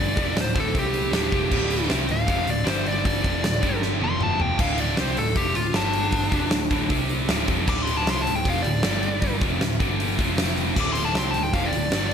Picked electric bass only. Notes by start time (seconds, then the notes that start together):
Already playing: G1
0.17 F1
0.36 D1
0.56 D1
0.75 C2
1.13 D1
1.32 F1
1.52 D1
1.90 C2
2.10 D1
2.28 F1
2.47 D1
2.67 G1
3.24 F1
3.44 D1
3.64 G1
4.02 F1
4.59 D1
4.98 C2
5.17 D1
5.36 F1
5.56 D1
5.75 G1
6.32 F1
6.51 D1
6.71 D1
6.90 C2
7.30 D1
7.48 F1
7.68 D1
8.06 C2
8.26 D1
8.45 F1
8.65 D1
8.85 G1
9.42 F1
9.62 D1
9.80 G1
10.18 F1
10.77 D1
11.15 C2
11.35 D1
11.53 F1
11.73 D1
11.91 G1